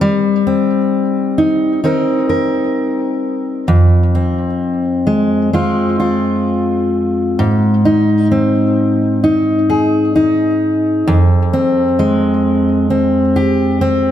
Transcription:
0, 0, Header, 1, 2, 480
1, 0, Start_track
1, 0, Tempo, 920245
1, 7, Time_signature, 4, 2, 24, 8
1, 7362, End_track
2, 0, Start_track
2, 0, Title_t, "Steel-string acoustic guitar"
2, 0, Program_c, 0, 25
2, 0, Note_on_c, 0, 60, 43
2, 0, Note_on_c, 0, 63, 40
2, 0, Note_on_c, 0, 70, 48
2, 6, Note_on_c, 0, 55, 66
2, 242, Note_off_c, 0, 60, 0
2, 244, Note_on_c, 0, 60, 43
2, 259, Note_off_c, 0, 70, 0
2, 717, Note_off_c, 0, 63, 0
2, 719, Note_on_c, 0, 63, 44
2, 956, Note_off_c, 0, 63, 0
2, 958, Note_on_c, 0, 63, 42
2, 959, Note_off_c, 0, 60, 0
2, 961, Note_on_c, 0, 60, 43
2, 965, Note_on_c, 0, 70, 46
2, 1190, Note_off_c, 0, 70, 0
2, 1197, Note_on_c, 0, 70, 48
2, 1916, Note_off_c, 0, 55, 0
2, 1919, Note_on_c, 0, 41, 64
2, 1965, Note_off_c, 0, 70, 0
2, 2162, Note_off_c, 0, 60, 0
2, 2164, Note_on_c, 0, 60, 44
2, 2641, Note_off_c, 0, 63, 0
2, 2643, Note_on_c, 0, 56, 42
2, 2884, Note_off_c, 0, 56, 0
2, 2886, Note_on_c, 0, 56, 44
2, 2887, Note_off_c, 0, 60, 0
2, 2889, Note_on_c, 0, 60, 47
2, 2892, Note_on_c, 0, 65, 50
2, 3121, Note_off_c, 0, 65, 0
2, 3128, Note_on_c, 0, 65, 45
2, 3852, Note_off_c, 0, 41, 0
2, 3854, Note_on_c, 0, 44, 71
2, 3903, Note_off_c, 0, 65, 0
2, 4094, Note_off_c, 0, 60, 0
2, 4096, Note_on_c, 0, 63, 49
2, 4335, Note_off_c, 0, 56, 0
2, 4337, Note_on_c, 0, 60, 44
2, 4811, Note_off_c, 0, 63, 0
2, 4818, Note_on_c, 0, 63, 54
2, 5057, Note_on_c, 0, 68, 52
2, 5291, Note_off_c, 0, 63, 0
2, 5297, Note_on_c, 0, 63, 52
2, 5775, Note_off_c, 0, 44, 0
2, 5777, Note_on_c, 0, 41, 75
2, 5824, Note_off_c, 0, 63, 0
2, 6016, Note_off_c, 0, 60, 0
2, 6016, Note_on_c, 0, 60, 52
2, 6255, Note_on_c, 0, 56, 55
2, 6728, Note_off_c, 0, 60, 0
2, 6730, Note_on_c, 0, 60, 47
2, 6883, Note_off_c, 0, 68, 0
2, 6968, Note_on_c, 0, 67, 57
2, 7202, Note_off_c, 0, 60, 0
2, 7204, Note_on_c, 0, 60, 59
2, 7362, Note_off_c, 0, 41, 0
2, 7362, Note_off_c, 0, 56, 0
2, 7362, Note_off_c, 0, 60, 0
2, 7362, Note_off_c, 0, 67, 0
2, 7362, End_track
0, 0, End_of_file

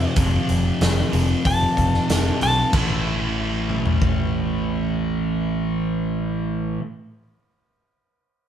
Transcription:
0, 0, Header, 1, 6, 480
1, 0, Start_track
1, 0, Key_signature, 0, "minor"
1, 0, Tempo, 641643
1, 127, Time_signature, 4, 2, 24, 8
1, 6347, End_track
2, 0, Start_track
2, 0, Title_t, "Lead electric guitar"
2, 0, Program_c, 0, 29
2, 0, Note_on_c, 0, 77, 99
2, 105, Note_off_c, 0, 77, 0
2, 1098, Note_on_c, 0, 81, 91
2, 1791, Note_off_c, 0, 81, 0
2, 1817, Note_on_c, 0, 81, 98
2, 2045, Note_off_c, 0, 81, 0
2, 6347, End_track
3, 0, Start_track
3, 0, Title_t, "Distorted electric guitar"
3, 0, Program_c, 1, 30
3, 0, Note_on_c, 1, 41, 71
3, 0, Note_on_c, 1, 48, 70
3, 0, Note_on_c, 1, 53, 80
3, 0, Note_on_c, 1, 57, 78
3, 109, Note_off_c, 1, 41, 0
3, 113, Note_off_c, 1, 48, 0
3, 116, Note_off_c, 1, 53, 0
3, 119, Note_on_c, 1, 41, 89
3, 128, Note_on_c, 1, 48, 85
3, 139, Note_on_c, 1, 53, 76
3, 360, Note_off_c, 1, 57, 0
3, 826, Note_off_c, 1, 53, 0
3, 829, Note_off_c, 1, 41, 0
3, 833, Note_off_c, 1, 48, 0
3, 835, Note_on_c, 1, 53, 66
3, 847, Note_on_c, 1, 48, 62
3, 850, Note_on_c, 1, 41, 58
3, 1546, Note_off_c, 1, 41, 0
3, 1547, Note_off_c, 1, 53, 0
3, 1553, Note_off_c, 1, 48, 0
3, 1555, Note_on_c, 1, 41, 65
3, 1563, Note_on_c, 1, 48, 72
3, 1569, Note_on_c, 1, 53, 69
3, 2025, Note_off_c, 1, 48, 0
3, 2027, Note_off_c, 1, 41, 0
3, 2028, Note_on_c, 1, 45, 81
3, 2034, Note_off_c, 1, 53, 0
3, 2045, Note_on_c, 1, 52, 83
3, 2061, Note_on_c, 1, 57, 84
3, 5081, Note_off_c, 1, 45, 0
3, 5089, Note_off_c, 1, 52, 0
3, 5097, Note_off_c, 1, 57, 0
3, 6347, End_track
4, 0, Start_track
4, 0, Title_t, "Distorted electric guitar"
4, 0, Program_c, 2, 30
4, 0, Note_on_c, 2, 41, 81
4, 0, Note_on_c, 2, 48, 83
4, 0, Note_on_c, 2, 53, 89
4, 108, Note_off_c, 2, 41, 0
4, 116, Note_off_c, 2, 48, 0
4, 120, Note_off_c, 2, 53, 0
4, 6347, End_track
5, 0, Start_track
5, 0, Title_t, "Picked electric bass"
5, 0, Program_c, 3, 34
5, 124, Note_on_c, 3, 29, 92
5, 272, Note_off_c, 3, 29, 0
5, 370, Note_on_c, 3, 29, 69
5, 516, Note_off_c, 3, 29, 0
5, 608, Note_on_c, 3, 29, 91
5, 755, Note_off_c, 3, 29, 0
5, 847, Note_on_c, 3, 29, 81
5, 994, Note_off_c, 3, 29, 0
5, 1088, Note_on_c, 3, 29, 77
5, 1235, Note_off_c, 3, 29, 0
5, 1326, Note_on_c, 3, 29, 78
5, 1474, Note_off_c, 3, 29, 0
5, 1570, Note_on_c, 3, 29, 78
5, 1716, Note_off_c, 3, 29, 0
5, 1811, Note_on_c, 3, 35, 65
5, 1957, Note_off_c, 3, 35, 0
5, 2043, Note_on_c, 3, 33, 77
5, 5058, Note_off_c, 3, 33, 0
5, 6347, End_track
6, 0, Start_track
6, 0, Title_t, "Drums"
6, 121, Note_on_c, 9, 46, 63
6, 124, Note_on_c, 9, 36, 107
6, 196, Note_off_c, 9, 46, 0
6, 199, Note_off_c, 9, 36, 0
6, 366, Note_on_c, 9, 46, 46
6, 441, Note_off_c, 9, 46, 0
6, 607, Note_on_c, 9, 46, 56
6, 613, Note_on_c, 9, 38, 92
6, 682, Note_off_c, 9, 46, 0
6, 687, Note_off_c, 9, 38, 0
6, 847, Note_on_c, 9, 46, 45
6, 922, Note_off_c, 9, 46, 0
6, 1086, Note_on_c, 9, 36, 105
6, 1088, Note_on_c, 9, 46, 73
6, 1161, Note_off_c, 9, 36, 0
6, 1163, Note_off_c, 9, 46, 0
6, 1325, Note_on_c, 9, 36, 69
6, 1329, Note_on_c, 9, 46, 44
6, 1400, Note_off_c, 9, 36, 0
6, 1404, Note_off_c, 9, 46, 0
6, 1451, Note_on_c, 9, 38, 29
6, 1526, Note_off_c, 9, 38, 0
6, 1569, Note_on_c, 9, 46, 68
6, 1574, Note_on_c, 9, 38, 99
6, 1643, Note_off_c, 9, 46, 0
6, 1649, Note_off_c, 9, 38, 0
6, 1806, Note_on_c, 9, 46, 51
6, 1880, Note_off_c, 9, 46, 0
6, 2043, Note_on_c, 9, 36, 104
6, 2043, Note_on_c, 9, 49, 79
6, 2118, Note_off_c, 9, 36, 0
6, 2118, Note_off_c, 9, 49, 0
6, 2766, Note_on_c, 9, 47, 50
6, 2840, Note_off_c, 9, 47, 0
6, 2884, Note_on_c, 9, 43, 66
6, 2959, Note_off_c, 9, 43, 0
6, 3005, Note_on_c, 9, 36, 86
6, 3079, Note_off_c, 9, 36, 0
6, 6347, End_track
0, 0, End_of_file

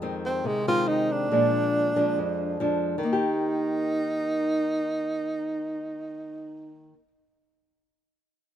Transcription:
0, 0, Header, 1, 3, 480
1, 0, Start_track
1, 0, Key_signature, -3, "major"
1, 0, Tempo, 431965
1, 1437, Time_signature, 4, 2, 24, 8
1, 9506, End_track
2, 0, Start_track
2, 0, Title_t, "Tenor saxophone"
2, 0, Program_c, 0, 66
2, 285, Note_on_c, 0, 60, 78
2, 516, Note_on_c, 0, 56, 79
2, 533, Note_off_c, 0, 60, 0
2, 737, Note_off_c, 0, 56, 0
2, 755, Note_on_c, 0, 65, 85
2, 978, Note_on_c, 0, 63, 78
2, 994, Note_off_c, 0, 65, 0
2, 1239, Note_on_c, 0, 62, 92
2, 1256, Note_off_c, 0, 63, 0
2, 3136, Note_off_c, 0, 62, 0
2, 3386, Note_on_c, 0, 63, 78
2, 7729, Note_off_c, 0, 63, 0
2, 9506, End_track
3, 0, Start_track
3, 0, Title_t, "Nylon-string guitar"
3, 0, Program_c, 1, 24
3, 0, Note_on_c, 1, 41, 58
3, 20, Note_on_c, 1, 51, 55
3, 25, Note_on_c, 1, 56, 50
3, 32, Note_on_c, 1, 60, 56
3, 456, Note_off_c, 1, 41, 0
3, 493, Note_on_c, 1, 48, 62
3, 690, Note_off_c, 1, 51, 0
3, 692, Note_off_c, 1, 56, 0
3, 696, Note_off_c, 1, 60, 0
3, 750, Note_on_c, 1, 51, 58
3, 758, Note_on_c, 1, 56, 53
3, 758, Note_on_c, 1, 60, 56
3, 1415, Note_off_c, 1, 51, 0
3, 1416, Note_off_c, 1, 56, 0
3, 1418, Note_off_c, 1, 60, 0
3, 1420, Note_off_c, 1, 48, 0
3, 1462, Note_on_c, 1, 53, 50
3, 1463, Note_on_c, 1, 56, 44
3, 1467, Note_on_c, 1, 46, 58
3, 1472, Note_on_c, 1, 62, 50
3, 2130, Note_off_c, 1, 56, 0
3, 2131, Note_off_c, 1, 53, 0
3, 2134, Note_off_c, 1, 62, 0
3, 2180, Note_on_c, 1, 53, 57
3, 2183, Note_on_c, 1, 56, 55
3, 2183, Note_on_c, 1, 62, 60
3, 2387, Note_off_c, 1, 46, 0
3, 2423, Note_on_c, 1, 41, 58
3, 2849, Note_off_c, 1, 53, 0
3, 2850, Note_off_c, 1, 56, 0
3, 2850, Note_off_c, 1, 62, 0
3, 2890, Note_on_c, 1, 53, 50
3, 2900, Note_on_c, 1, 56, 46
3, 2901, Note_on_c, 1, 62, 53
3, 3307, Note_off_c, 1, 53, 0
3, 3311, Note_on_c, 1, 51, 56
3, 3326, Note_off_c, 1, 62, 0
3, 3328, Note_off_c, 1, 56, 0
3, 3344, Note_off_c, 1, 41, 0
3, 3376, Note_on_c, 1, 58, 50
3, 3475, Note_on_c, 1, 67, 55
3, 7699, Note_off_c, 1, 51, 0
3, 7764, Note_off_c, 1, 58, 0
3, 7862, Note_off_c, 1, 67, 0
3, 9506, End_track
0, 0, End_of_file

